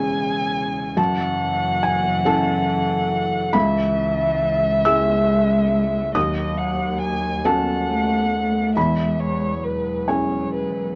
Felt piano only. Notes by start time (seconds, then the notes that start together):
Already playing: E2 C#4 E4 G#4 B5
0.97 F#2 A5
1.83 G#5
2.25 C#4 E4 A4 A5
3.53 C#2 B5
4.85 C#4 E4 G#4 E6
6.15 D#2 D#6
7.45 C#4 F#4 A4 A5
8.77 E2 B5
10.08 C#4 E4 G#4 G#5